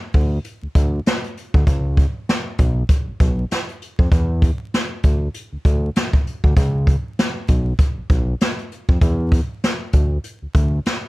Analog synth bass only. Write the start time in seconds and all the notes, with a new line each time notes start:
0.14 D2
0.63 D2
0.76 D2
1.54 D2
1.67 C#2
2.59 B1
3.08 B1
3.20 B1
3.99 F2
4.12 E2
5.04 D2
5.53 D2
5.65 D2
6.44 D2
6.57 C#2
7.49 B1
7.97 B1
8.10 B1
8.89 F2
9.02 E2
9.94 D2
10.42 D2
10.55 D2